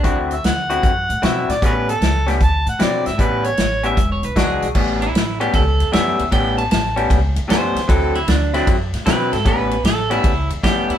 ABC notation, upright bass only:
X:1
M:4/4
L:1/8
Q:"Swing" 1/4=153
K:Amix
V:1 name="Upright bass" clef=bass
D,,2 D,,2 F,, A,, B,, A,, | A,,,2 C,,2 D,, A,, B,, ^G,,, | A,,,2 A,,,2 E,,, B,,, C,, B,,, | A,,,2 A,,,2 C,, E,, F,, E,, |
A,,,2 A,,,2 C,, E,, F,, E,, | D,,2 D,,2 F,, A,, B,, ^G,,, | A,,,2 A,,,2 C,, E,, F,, E,, |]